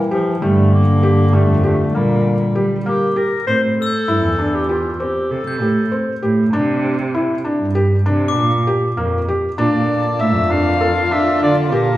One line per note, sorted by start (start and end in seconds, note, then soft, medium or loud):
0.00 0.37 E3 loud
0.00 0.23 G5 soft
0.11 0.44 F3 medium
0.11 0.31 G4 medium
0.41 0.78 G2 medium
0.41 3.12 D3 medium
0.41 0.82 G3 medium
0.41 0.75 A3 medium
0.73 1.36 A#3 medium
0.88 1.12 G2 medium
1.03 1.23 G4 medium
1.33 1.46 G2 medium
1.33 1.53 G3 medium
1.33 1.64 A3 medium
1.49 1.85 F2 medium
1.63 1.93 A3 medium
1.63 1.84 G4 medium
1.95 2.43 A#2 medium
1.95 2.83 G3 medium
1.95 2.35 A#3 medium
2.55 2.80 G3 medium
2.55 2.75 G4 medium
2.86 3.06 A#3 medium
2.86 3.18 G4 medium
3.16 3.36 G4 medium
3.16 3.46 A#4 medium
3.47 3.59 A2 medium
3.47 3.87 C4 medium
3.47 3.61 C5 medium
3.61 3.86 A2 medium
3.78 4.56 A4 medium
3.78 4.58 E6 medium
3.87 4.61 G6 soft
4.08 4.24 G2 medium
4.08 4.28 E4 medium
4.23 5.07 E2 medium
4.39 4.59 D4 medium
4.55 4.68 G4 medium
4.69 5.02 F4 medium
4.69 4.89 G4 medium
5.00 5.40 C4 medium
5.00 5.33 G4 medium
5.31 5.43 C3 medium
5.31 6.23 A4 medium
5.46 5.63 C3 medium
5.46 6.24 G6 soft
5.61 5.86 A2 medium
5.61 5.81 G4 medium
5.92 6.12 C4 medium
6.23 6.47 A2 medium
6.23 6.43 G4 medium
6.53 7.38 C3 medium
6.53 6.93 D4 medium
7.14 7.35 E4 medium
7.45 7.65 D4 medium
7.60 7.96 G2 medium
7.75 7.95 G4 medium
8.06 8.38 C3 medium
8.06 8.46 D4 medium
8.28 9.05 D6 medium
8.36 8.60 A#2 medium
8.67 8.87 G4 medium
8.97 9.22 F2 medium
8.97 9.17 A#3 medium
9.28 9.48 G4 medium
9.58 9.71 A#2 medium
9.58 11.97 D3 medium
9.58 11.97 A#3 medium
9.58 9.98 D4 medium
9.58 11.97 F4 medium
9.58 10.22 D5 medium
9.58 11.97 A5 medium
9.74 9.98 A#2 medium
10.19 10.37 A2 medium
10.19 10.39 E5 medium
10.19 10.53 E5 medium
10.35 11.19 F2 medium
10.50 10.70 D4 medium
10.50 11.14 F5 medium
10.81 11.01 A4 medium
11.11 11.51 D4 medium
11.11 11.42 E5 medium
11.41 11.53 D3 medium
11.41 11.56 D5 medium
11.57 11.74 D3 medium
11.72 11.96 A#2 medium
11.72 11.92 G4 medium
11.72 11.97 A#4 medium